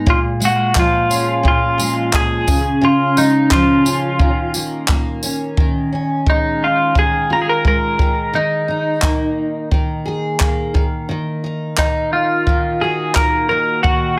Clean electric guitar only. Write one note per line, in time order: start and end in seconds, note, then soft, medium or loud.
0.10 0.19 F4 medium
0.45 0.79 F#4 medium
0.79 1.47 F4 medium
1.48 2.15 F4 medium
2.15 2.84 G#4 loud
2.85 3.19 F4 medium
3.18 3.53 D#4 medium
3.53 4.51 F4 medium
6.30 6.64 D#4 medium
6.64 6.95 F4 medium
6.99 7.32 G#4 medium
7.33 7.39 A#4 medium
7.42 7.48 G#4 medium
7.49 7.65 A#4 medium
7.68 8.37 A#4 medium
8.35 9.68 D#4 medium
11.78 12.10 D#4 medium
12.13 12.83 F4 medium
12.81 13.15 G#4 medium
13.16 13.48 A#4 medium
13.49 13.83 A#4 medium
13.83 14.17 F#4 medium